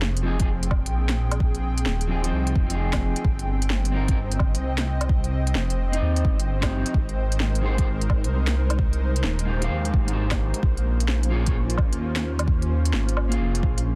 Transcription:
Already playing: detuned saw bass F1, analog synth pad F3 C4
0.02 snare
0.14 analog synth pad G5, closed hi-hat
0.23 clean electric guitar F3 C4 D#4
0.27 clean electric guitar G#4
0.38 clean electric guitar F3 C4 D#4, kick, closed hi-hat
0.42 clean electric guitar G#4
0.63 closed hi-hat
0.69 analog synth pad G#4, kick, low woodblock
0.86 detuned saw bass A#1, closed hi-hat
1.09 snare, closed hi-hat
1.31 closed hi-hat, low woodblock
1.40 kick
1.55 closed hi-hat
1.78 closed hi-hat
1.86 detuned saw bass D#1, snare
2.01 closed hi-hat
2.08 clean electric guitar F3 C4 D#4 G#4
2.22 clean electric guitar F3 C4 D#4 C5, closed hi-hat
2.33 detuned saw bass C2
2.47 closed hi-hat
2.56 detuned saw bass F1, kick
2.66 clean electric guitar F3 C4, closed hi-hat
2.71 clean electric guitar D#4 G#4
2.93 kick, snare, closed hi-hat, low woodblock
3.16 closed hi-hat
3.25 detuned saw bass G1, kick
3.39 closed hi-hat
3.55 analog synth pad C5
3.62 closed hi-hat
3.70 snare
3.82 analog synth pad D#5, closed hi-hat
3.92 clean electric guitar C4 D#4
3.96 clean electric guitar A#4
4.07 clean electric guitar C4 D#4, kick, closed hi-hat
4.11 clean electric guitar A#4
4.32 closed hi-hat
4.39 kick, low woodblock
4.55 detuned saw bass C2, closed hi-hat
4.78 snare, closed hi-hat
5.01 closed hi-hat, low woodblock
5.09 kick
5.24 closed hi-hat
5.47 closed hi-hat
5.55 detuned saw bass F1, snare
5.70 closed hi-hat
5.92 clean electric guitar C4 D#4, closed hi-hat
5.96 clean electric guitar D#5
6.02 detuned saw bass D#2
6.16 closed hi-hat
6.25 detuned saw bass G1, kick
6.40 closed hi-hat
6.61 clean electric guitar C4 D#4 G4, kick, snare, closed hi-hat, low woodblock
6.86 closed hi-hat
6.94 detuned saw bass G#1, analog synth pad G#3, kick
7.08 analog synth pad A#4, closed hi-hat
7.29 analog synth pad D#4, closed hi-hat
7.40 snare
7.55 closed hi-hat
7.61 clean electric guitar G#3 D#4 G4
7.66 clean electric guitar C5
7.77 clean electric guitar G#3 D#4 G4 C5, kick, closed hi-hat
8.01 closed hi-hat
8.10 kick, low woodblock
8.24 detuned saw bass C2, closed hi-hat
8.47 snare, closed hi-hat
8.70 closed hi-hat, low woodblock
8.79 kick
8.93 closed hi-hat
9.16 closed hi-hat
9.24 detuned saw bass D#1, snare
9.39 closed hi-hat
9.45 clean electric guitar G#3 D#4 G4
9.50 clean electric guitar C5
9.60 clean electric guitar G#3 D#4 G4 F5, closed hi-hat
9.70 detuned saw bass D#2
9.85 closed hi-hat
9.94 detuned saw bass G#1, kick
10.05 clean electric guitar G#3 D#4, closed hi-hat
10.11 clean electric guitar G4 C5
10.31 kick, snare, closed hi-hat, low woodblock
10.54 closed hi-hat
10.63 detuned saw bass A#1, analog synth pad A#3, kick
10.77 closed hi-hat
10.85 analog synth pad C#4
11.00 analog synth pad F4, closed hi-hat
11.08 snare
11.23 closed hi-hat
11.30 clean electric guitar A#3 F4 G#4 C#5
11.45 clean electric guitar A#3 F4 G#4 C#5, kick, closed hi-hat
11.70 closed hi-hat
11.78 kick, low woodblock
11.93 detuned saw bass D#2, closed hi-hat
12.16 snare, closed hi-hat
12.39 closed hi-hat, low woodblock
12.48 kick
12.62 closed hi-hat
12.85 closed hi-hat
12.93 detuned saw bass G#1, snare
13.09 closed hi-hat
13.17 low woodblock
13.29 clean electric guitar A#3 F4 G#4, closed hi-hat
13.34 clean electric guitar F5
13.40 detuned saw bass F1
13.55 closed hi-hat
13.63 detuned saw bass A#1, kick
13.78 closed hi-hat

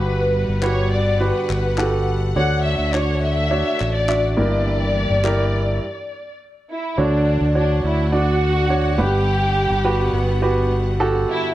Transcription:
Already playing: fingered electric bass G1, grand piano G2 F#4 G4 B4, string section D3 G3 B3 F#5, violin section B4
0.48 fingered electric bass G1
0.63 grand piano F#4 G4 B4, violin section C#5, clap
0.92 violin section D5
1.20 grand piano F#4 G4 B4, violin section B4
1.50 fingered electric bass G1, clap
1.78 grand piano F#4 G4 A4, clap
2.34 fingered electric bass D2, string section D3 A3 D4, grand piano D3 D4 F#4 C#5, violin section F#5
2.65 violin section E5
2.79 fingered electric bass D2
2.93 grand piano D4 F#4 C#5, violin section C#5, clap
3.23 violin section E5
3.50 grand piano D4 F#4 C#5
3.80 fingered electric bass A1, clap
3.95 violin section D5
4.08 grand piano D4 F#4 E5, clap
4.37 fingered electric bass G1, grand piano G2 E4 G4 A#4, string section E3 A#3 D4 G4, violin section D5
5.11 fingered electric bass G1
5.24 grand piano E4 G4 A#4, clap
6.72 violin section E4
6.97 fingered electric bass D2, grand piano D3 D4 F#4 C#5, string section D3 A3 D4 F#5, violin section D4
7.41 fingered electric bass D2
7.55 grand piano D4 F#4 C#5, violin section D4
7.84 fingered electric bass D2, violin section E4
8.12 grand piano D4 F#4 D5, violin section F#4
8.70 grand piano D4 F#4 C#5
8.98 fingered electric bass G1, grand piano G2 G4 B4 F#5, string section G3 B3, violin section G4
9.70 fingered electric bass G1
9.85 grand piano F#4 G4 B4
10.13 fingered electric bass G1, violin section B3
10.42 grand piano F#4 G4 B4
11.00 grand piano F#4 G4 A4
11.31 violin section E4

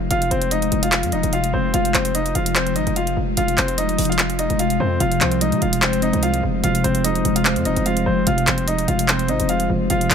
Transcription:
Already playing: ambient pad C3 F3 G#3 F4
0.11 808-style bass F1, grand piano F4 F5, closed hi-hat
0.22 closed hi-hat
0.31 808-style bass F1, grand piano C4 C5, closed hi-hat
0.42 closed hi-hat
0.51 grand piano D#4 D#5, closed hi-hat
0.62 closed hi-hat
0.72 808-style bass F1, closed hi-hat
0.83 grand piano F4 F5, closed hi-hat
0.92 clap, closed hi-hat
1.03 808-style bass F2, closed hi-hat
1.12 808-style bass F1, grand piano D#4 D#5, closed hi-hat
1.23 808-style bass F1, closed hi-hat
1.33 grand piano F4 F5, closed hi-hat
1.44 closed hi-hat
1.54 808-style bass F1, grand piano C4 C5
1.74 808-style bass F1, grand piano F4 F5, closed hi-hat
1.85 closed hi-hat
1.94 808-style bass F1, grand piano C4 C5, clap, closed hi-hat
2.05 closed hi-hat
2.15 grand piano D#4 D#5, closed hi-hat
2.26 closed hi-hat
2.35 808-style bass F1, grand piano F4 F5, closed hi-hat
2.46 closed hi-hat
2.56 grand piano C4 C5, clap, closed hi-hat
2.67 closed hi-hat
2.76 808-style bass G#1, grand piano D#4 D#5, closed hi-hat
2.87 808-style bass F1, closed hi-hat
2.96 grand piano F4 F5, closed hi-hat
3.07 closed hi-hat
3.17 808-style bass F1
3.37 808-style bass F1, grand piano F4 F5, closed hi-hat
3.48 closed hi-hat
3.58 808-style bass F1, grand piano C4 C5, clap, closed hi-hat
3.68 closed hi-hat
3.78 grand piano D#4 D#5, closed hi-hat
3.89 closed hi-hat
3.98 808-style bass F1, closed hi-hat, open hi-hat
4.05 closed hi-hat
4.09 grand piano F4 F5, closed hi-hat
4.19 clap, closed hi-hat
4.30 closed hi-hat
4.39 grand piano D#4 D#5, closed hi-hat
4.50 808-style bass F1, closed hi-hat
4.59 grand piano F4 F5, closed hi-hat
4.70 closed hi-hat
4.80 808-style bass F2, grand piano C4 C5
5.00 808-style bass F1, tine electric piano C3, grand piano F4 F5, closed hi-hat
5.12 closed hi-hat
5.21 808-style bass C2, tine electric piano F3, grand piano C4 C5, clap, closed hi-hat
5.32 closed hi-hat
5.41 tine electric piano G#3, grand piano D#4 D#5, closed hi-hat
5.52 808-style bass C3, closed hi-hat
5.62 808-style bass F1, grand piano F4 F5, closed hi-hat
5.73 closed hi-hat
5.82 grand piano C4 C5, tine electric piano C5, clap, closed hi-hat
5.93 closed hi-hat
6.02 tine electric piano C4, grand piano D#4 D#5, closed hi-hat
6.13 808-style bass C2, closed hi-hat
6.23 tine electric piano G#3, grand piano F4 F5, closed hi-hat
6.34 closed hi-hat
6.43 808-style bass F1, tine electric piano F3
6.64 808-style bass F1, tine electric piano C3, grand piano F4 F5, closed hi-hat
6.75 closed hi-hat
6.84 808-style bass F1, tine electric piano F3, grand piano C4 C5, closed hi-hat
6.95 closed hi-hat
7.04 tine electric piano G#3, grand piano D#4 D#5, closed hi-hat
7.15 closed hi-hat
7.25 808-style bass F1, closed hi-hat
7.36 grand piano F4 F5, closed hi-hat
7.45 tine electric piano C5, clap, closed hi-hat
7.56 808-style bass F2, closed hi-hat
7.65 808-style bass F1, tine electric piano C4, grand piano D#4 D#5, closed hi-hat
7.76 808-style bass F1, closed hi-hat
7.86 tine electric piano G#3, grand piano F4 F5, closed hi-hat
7.97 closed hi-hat
8.06 808-style bass F1, tine electric piano F3, grand piano C4 C5
8.27 808-style bass F1, tine electric piano C3, ambient pad C3 F3 G#3 F4, grand piano F4 F5, closed hi-hat
8.38 closed hi-hat
8.47 808-style bass F1, tine electric piano F3, grand piano C4 C5, clap, closed hi-hat
8.58 closed hi-hat
8.67 tine electric piano G#3, grand piano D#4 D#5, closed hi-hat
8.78 closed hi-hat
8.88 808-style bass F1, grand piano F4 F5, closed hi-hat
8.99 closed hi-hat
9.08 grand piano C4 C5, tine electric piano C5, clap, closed hi-hat
9.19 closed hi-hat
9.28 808-style bass G#1, tine electric piano C4, grand piano D#4 D#5, closed hi-hat
9.40 808-style bass F1, closed hi-hat
9.49 tine electric piano G#3, grand piano F4 F5, closed hi-hat
9.60 closed hi-hat
9.70 808-style bass F1, tine electric piano F3
9.90 808-style bass F1, tine electric piano C3, grand piano F4 F5, closed hi-hat
10.01 closed hi-hat
10.10 808-style bass F1, tine electric piano F3, grand piano C4 C5, clap, closed hi-hat

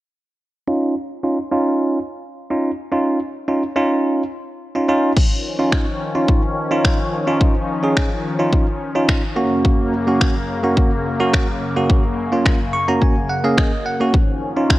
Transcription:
0.68 tine electric piano C#4 D#4 F4
1.23 tine electric piano C#4 D#4 F4
1.52 tine electric piano C#4 D#4 F4
2.50 tine electric piano C#4 D#4 F4
2.92 tine electric piano C#4 D#4 F4
3.48 tine electric piano C#4 D#4 F4
3.76 tine electric piano C#4 D#4 F4
4.75 tine electric piano C#4 D#4 F4
4.88 tine electric piano C#4 D#4 F4
5.16 supersaw synth D#3 F3 C#4, kick, crash
5.59 tine electric piano C#4 D#4 F4
5.72 finger snap, kick
6.15 tine electric piano C#4 D#4 F4
6.29 kick
6.71 tine electric piano C#4 D#4 F4
6.85 finger snap, kick
7.27 tine electric piano C#4 D#4 F4
7.41 kick
7.83 tine electric piano C#4 D#4 G#4
7.97 finger snap, kick
8.39 tine electric piano C#4 D#4 F4
8.53 kick
8.95 tine electric piano C#4 D#4 F4
9.09 finger snap, kick
9.36 supersaw synth F#2 C#3 A#3, tine electric piano A#3 C#4 F#4
9.65 kick
10.07 tine electric piano A#3 C#4 F#4
10.21 finger snap, kick
10.64 tine electric piano A#3 C#4 F#4
10.77 kick
11.20 tine electric piano A#3 C#4 F#4
11.33 finger snap, kick
11.76 tine electric piano A#3 C#4 F#4
11.89 kick
12.32 tine electric piano A#3 C#4 F4
12.46 finger snap, kick
12.73 tine electric piano C#6
12.88 tine electric piano A#3 C#4 F#4 A#5
13.01 tine electric piano G#5, kick
13.29 tine electric piano F#5
13.44 tine electric piano A#3 C#4 G#4 F5
13.57 tine electric piano D#5, finger snap, kick
13.86 tine electric piano F#5
14.00 tine electric piano A#3 C#4 F#4
14.14 supersaw synth D#3 F3 C#4, kick
14.56 tine electric piano C#4 D#4 F4
14.70 finger snap, kick

